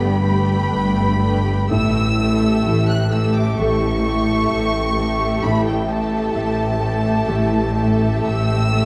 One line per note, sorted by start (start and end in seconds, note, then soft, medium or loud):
0.00 0.60 G1 medium
0.00 0.59 G2 medium
0.00 1.66 G2 medium
0.00 1.74 G2 medium
0.00 1.73 D3 soft
0.00 0.21 A3 medium
0.00 1.72 B3 soft
0.00 1.73 B3 soft
0.00 0.21 G4 medium
0.00 0.22 G4 soft
0.00 1.66 G4 soft
0.00 0.45 A4 soft
0.00 1.66 A4 medium
0.00 0.22 B4 medium
0.00 0.69 B4 soft
0.00 0.22 G5 medium
0.00 0.94 G5 soft
0.00 1.66 B5 medium
0.23 1.18 A3 medium
0.23 1.44 G4 soft
0.23 1.18 G4 medium
0.23 1.18 B4 medium
0.23 1.18 G5 medium
0.47 1.18 A4 soft
0.70 1.58 G1 medium
0.70 1.58 G2 medium
0.70 1.73 B4 medium
0.95 2.88 G5 medium
1.20 1.69 A3 medium
1.20 1.69 G4 medium
1.20 2.41 A4 soft
1.20 1.69 B4 medium
1.20 1.69 G5 soft
1.45 2.17 G4 soft
1.69 2.54 A1 medium
1.69 5.42 A2 medium
1.69 2.54 A2 medium
1.69 5.39 A2 medium
1.69 2.17 A3 medium
1.69 2.17 G4 medium
1.69 2.18 A4 soft
1.69 2.18 E5 medium
1.69 2.86 E6 loud
1.94 3.80 E4 soft
2.18 3.10 A3 medium
2.18 3.33 G4 soft
2.18 3.10 G4 medium
2.18 3.11 A4 medium
2.18 3.11 E5 medium
2.42 3.11 A4 soft
2.65 3.47 A1 medium
2.65 3.48 A2 medium
2.65 4.13 E3 soft
2.65 4.49 E5 soft
2.89 4.72 G5 soft
2.89 3.12 F#6 medium
3.11 4.02 A3 medium
3.11 4.02 G4 medium
3.11 4.26 A4 soft
3.11 4.03 A4 medium
3.11 4.03 E5 medium
3.11 3.35 E6 medium
3.35 4.02 G4 medium
3.35 3.58 D6 medium
3.57 4.39 A1 medium
3.57 4.39 A2 medium
3.57 7.27 E3 soft
3.57 5.39 A3 soft
3.57 5.40 G4 soft
3.57 5.40 A4 soft
3.57 5.42 C#6 loud
3.81 5.66 E4 soft
4.03 4.94 A3 medium
4.03 5.19 G4 soft
4.03 4.94 G4 medium
4.03 4.95 A4 medium
4.03 4.95 E5 medium
4.27 4.96 A4 soft
4.50 5.32 A1 medium
4.50 5.32 A2 medium
4.50 6.34 E5 soft
4.73 6.57 G5 medium
4.97 5.87 A3 medium
4.97 5.87 G4 medium
4.97 6.11 A4 medium
4.97 5.87 A4 medium
4.97 5.87 E5 medium
5.20 5.88 G4 soft
5.42 6.24 A1 medium
5.42 6.24 A2 medium
5.42 8.85 A2 medium
5.42 5.66 B5 medium
5.67 7.51 E4 soft
5.67 5.89 G5 medium
5.88 6.79 A3 medium
5.88 7.03 G4 soft
5.88 6.79 G4 medium
5.88 6.79 A4 medium
5.88 6.79 E5 medium
5.88 8.25 A5 medium
6.12 6.80 A4 medium
6.34 7.16 A1 medium
6.34 7.16 A2 medium
6.34 7.26 A3 medium
6.34 8.25 E5 medium
6.58 8.49 G5 medium
6.80 7.74 A3 medium
6.80 7.74 G4 medium
6.80 7.75 A4 medium
6.80 8.00 A4 soft
6.80 7.75 E5 medium
7.05 7.76 G4 medium
7.27 8.14 A1 medium
7.27 8.14 A2 medium
7.27 8.85 E3 medium
7.27 8.85 A3 medium
7.27 8.85 G4 medium
7.27 8.85 A4 medium
7.52 8.85 E4 medium
7.76 8.70 A3 medium
7.76 8.70 G4 medium
7.76 8.85 G4 soft
7.76 8.71 A4 medium
7.76 8.71 E5 medium
8.02 8.71 A4 medium
8.26 8.85 A1 medium
8.26 8.85 A2 medium
8.26 8.85 E5 medium
8.26 8.85 E6 loud
8.50 8.85 G5 medium
8.71 8.85 A3 medium
8.71 8.85 G4 medium
8.71 8.85 A4 medium
8.71 8.85 E5 medium